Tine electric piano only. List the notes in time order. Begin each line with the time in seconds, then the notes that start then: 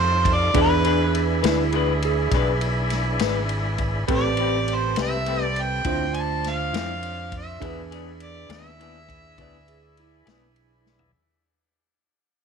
Already playing: D#4 G4 A4
0.54 D4 G#4 B4
4.08 C4 G4 B4
5.86 D4 F4 C5
7.60 D4 G#4 B4